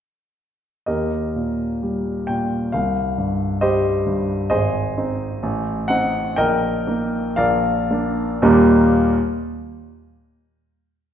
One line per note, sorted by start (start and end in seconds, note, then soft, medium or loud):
0.86 2.69 D#2 soft
0.86 2.24 G4 soft
0.86 2.24 A#4 soft
0.86 2.28 D#5 medium
1.36 2.10 A#2 soft
1.83 2.55 G3 soft
2.27 2.73 A#2 soft
2.27 2.73 G5 medium
2.72 4.48 C2 soft
2.72 3.62 F5 medium
3.18 3.89 G2 soft
3.61 4.34 G3 soft
3.61 4.47 G4 medium
3.61 4.47 C5 medium
3.61 4.48 D#5 medium
4.06 4.51 G2 soft
4.50 5.40 G#1 medium
4.50 5.85 G#4 medium
4.50 5.85 C5 medium
4.50 5.89 D#5 medium
4.97 5.39 C4 soft
4.97 5.39 D#4 soft
5.43 6.35 A1 medium
5.88 6.34 C4 soft
5.88 6.34 D#4 soft
5.88 6.37 F#5 medium
6.36 7.35 A#1 medium
6.36 7.34 A#4 medium
6.36 7.34 D#5 medium
6.36 7.37 G5 medium
6.87 7.34 A#3 soft
6.87 7.34 D#4 soft
7.36 8.40 A#1 medium
7.36 8.39 A#4 medium
7.36 8.39 D5 medium
7.36 8.43 F5 medium
7.91 8.40 A#3 soft
7.91 8.40 D4 soft
8.42 9.00 D#2 medium
8.42 9.00 A#2 medium
8.42 9.00 G3 medium
8.42 9.00 A#3 medium
8.42 9.01 D#4 medium
8.42 9.01 G4 medium
8.42 9.00 D#5 medium